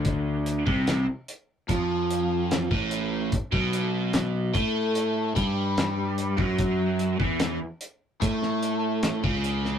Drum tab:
HH |x-x-x-x-x-x-x-x-|x-x-x-x-x-x-x-x-|x-x-x-x-x-x-x-x-|
SD |----o-------o---|----o-------o---|----o----o--o--o|
BD |o--o----o----o--|oo----o---o----o|o--o----o----o--|